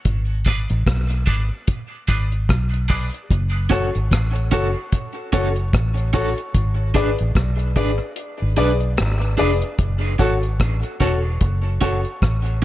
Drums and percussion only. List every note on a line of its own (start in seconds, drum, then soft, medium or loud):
0.05 kick loud
0.05 closed hi-hat loud
0.46 kick medium
0.46 cross-stick medium
0.46 closed hi-hat medium
0.70 closed hi-hat soft
0.86 kick loud
0.86 cross-stick loud
0.86 closed hi-hat medium
1.10 closed hi-hat soft
1.27 kick medium
1.27 closed hi-hat medium
1.68 kick loud
1.68 closed hi-hat loud
2.08 kick medium
2.08 closed hi-hat medium
2.32 closed hi-hat soft
2.49 kick loud
2.49 cross-stick loud
2.49 closed hi-hat medium
2.74 closed hi-hat soft
2.90 kick medium
2.90 open hi-hat medium
3.14 closed hi-hat medium
3.31 kick loud
3.31 closed hi-hat loud
3.71 kick loud
3.71 cross-stick medium
3.71 closed hi-hat medium
3.95 closed hi-hat soft
4.11 kick loud
4.11 cross-stick loud
4.11 closed hi-hat loud
4.35 closed hi-hat medium
4.52 kick medium
4.52 closed hi-hat medium
4.92 kick loud
4.92 closed hi-hat loud
5.33 kick medium
5.33 closed hi-hat medium
5.56 closed hi-hat soft
5.73 kick loud
5.73 cross-stick loud
5.73 closed hi-hat medium
5.98 closed hi-hat soft
6.13 kick loud
6.13 open hi-hat medium
6.38 closed hi-hat medium
6.55 kick loud
6.55 closed hi-hat loud
6.95 kick medium
6.95 cross-stick medium
6.95 closed hi-hat medium
7.19 closed hi-hat soft
7.35 kick loud
7.35 cross-stick loud
7.35 closed hi-hat medium
7.59 closed hi-hat medium
7.76 kick loud
7.76 closed hi-hat medium
8.16 closed hi-hat medium
8.56 closed hi-hat medium
8.80 closed hi-hat soft
8.97 cross-stick loud
8.97 closed hi-hat medium
9.21 closed hi-hat soft
9.37 open hi-hat medium
9.62 closed hi-hat medium
9.79 kick loud
9.79 closed hi-hat loud
10.19 kick medium
10.19 closed hi-hat medium
10.43 closed hi-hat soft
10.60 kick loud
10.60 cross-stick loud
10.60 closed hi-hat medium
10.83 closed hi-hat medium
11.00 kick medium
11.00 closed hi-hat medium
11.41 kick loud
11.41 closed hi-hat loud
11.81 kick medium
11.81 closed hi-hat medium
12.05 closed hi-hat soft
12.22 kick loud
12.22 cross-stick medium
12.22 closed hi-hat medium
12.46 closed hi-hat soft